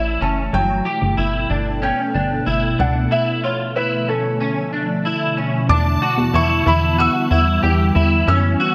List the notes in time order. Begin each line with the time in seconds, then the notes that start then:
Already playing: A1 E3 A3 E4 E5
0.21 F#1 C#4 A5
0.53 G1 B2 F#3 B3 A4 G5
0.85 G4
1.02 G1
1.17 G1 E4
1.50 G1 D4
1.82 C#4 G5
2.14 G1 D4
2.46 G1 E4
2.79 C#2 D4 F#5
3.11 D3 F3 A3 E4 E5
3.44 F4 C#5
3.76 E4 B4
4.08 C#4 A4
4.40 C#4
4.73 D4
5.05 E4
5.37 C#4
5.69 E2 D3 E3 G3 B3 D4 E4 A5 D6
6.02 F#4
6.17 E2
6.33 E2 E4 C#6
6.66 E2 E4 B5
6.98 F#4 E6
7.31 E2 E4
7.63 E2 G4
7.95 E2 E4
8.27 F#2 C#4 E6
8.60 F#4